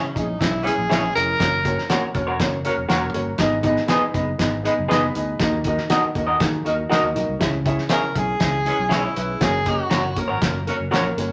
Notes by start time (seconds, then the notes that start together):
Already playing: C#3 C#4
0.04 muted fingered electric bass stroke
0.15 A#1 E3 G#3 C#4 D#4 E4 G#4 E5, kick, closed hi-hat
0.40 B1 C#4 E4 G#4 E5, kick, snare, closed hi-hat
0.63 E3 G#3 C#4 E4 G#4 E5
0.67 closed hi-hat
0.78 A#1
0.88 A#1 E3 G#3 C#4 E4 G#4 C#5 E5, snare, closed hi-hat
1.15 F1 C#4 E4 G#4 A#4 E5, closed hi-hat
1.40 F#1 A#3 C#4 F#4 C#5, kick, snare, closed hi-hat
1.64 F#3 A#3 C#4 F#4 A#4 C#5, kick, closed hi-hat
1.79 snare
1.90 A#3 C#4 F#4 A#4 C#5, snare, closed hi-hat
2.03 muted fingered electric bass stroke
2.14 E1 F#3 A#3 C#4 F#4 A#4 C#5, kick, closed hi-hat
2.27 F#4 A#4 C#5
2.40 F#1 A#3 C#4 F#4 C#5, kick, snare, closed hi-hat
2.64 F#3 A#3 C#4 F#4 A#4 C#5, closed hi-hat
2.78 E1
2.88 E1 F#3 A#3 C#4 F#4 A#4 C#5, snare, closed hi-hat
3.14 G1 A#3 C#4 F#4 C#5, closed hi-hat
3.38 G#1 G#2 B3 D#4 G#4 D#5, kick, snare, closed hi-hat
3.63 G#3 B3 D#4 G#4 B4 D#5, kick, closed hi-hat
3.77 snare
3.87 B3 D#4 G#4 B4 D#5, snare, closed hi-hat
4.01 muted fingered electric bass stroke
4.13 F#1 G#3 B3 D#4 G#4 B4 D#5, kick, closed hi-hat
4.38 G#1 B3 D#4 G#4 D#5, kick, snare, closed hi-hat
4.63 G#3 B3 D#4 G#4 B4 D#5, closed hi-hat
4.78 F#1
4.88 F#1 G#3 B3 D#4 G#4 B4 D#5, snare, closed hi-hat
5.14 D2 B3 D#4 G#4 D#5, closed hi-hat
5.40 D#2 D#3 A#3 D#4 F#4 D#5, kick, snare, closed hi-hat
5.64 F#3 A#3 D#4 F#4 A#4 D#5, kick, closed hi-hat
5.78 snare
5.89 A#3 D#4 F#4 A#4 D#5, snare, closed hi-hat
6.05 muted fingered electric bass stroke
6.15 D#2 F#3 A#3 D#4 F#4 A#4 D#5, kick, closed hi-hat
6.27 F#4 A#4 D#5
6.40 D#3 A#3 D#4 F#4 G#4, kick, snare, closed hi-hat
6.64 D#2 F#3 A#3 D#4 F#4 A#4 D#5, closed hi-hat
6.89 F#3 A#3 D#4 F#4 A#4 D#5, snare, closed hi-hat
7.03 D#2
7.15 B1 A#3 D#4 F#4 D#5, closed hi-hat
7.29 C2
7.39 C#2 C#3 C#4 E4 G#4 E5, kick, snare, closed hi-hat
7.65 E3 G#3 C#4 E4 G#4 E5, kick, closed hi-hat
7.78 snare
7.89 C#4 E4 G#4 A#4 C#5 E5, snare, closed hi-hat
8.03 muted fingered electric bass stroke
8.15 B1 E3 G#3 C#4 E4 G#4 E5, kick, closed hi-hat
8.40 C#2 C#4 E4 G#4 E5, kick, snare, closed hi-hat
8.66 E3 G#3 C#4 E4 G#4 C#5, closed hi-hat
8.79 B1
8.89 E3 G#3 C#4 E4 G#4 C#5, snare, closed hi-hat
8.93 E4
9.16 B1 C#4 E4 G#4 B4, closed hi-hat
9.40 F#1 A#3 C#4 F#4 G#4 C#5, kick, snare, closed hi-hat
9.66 F#3 A#3 C#4 F#4 A#4 D#5, kick, closed hi-hat
9.90 F#1 A#3 C#4 F#4 A#4 C#5, snare, closed hi-hat
10.16 F#3 A#3 C#4 F#4 A#4 C#5, kick, closed hi-hat
10.28 G#1 F#4 A#4 C#5
10.42 F#1 A#3 C#4 F#4 C#5, kick, snare, closed hi-hat
10.67 F#3 A#3 C#4 F#4 A#4 C#5, closed hi-hat
10.80 F#1
10.91 A#1 F#3 A#3 C#4 F#4 A#4 C#5, snare, closed hi-hat
11.17 G1 A#3 C#4 F#4 C#5, closed hi-hat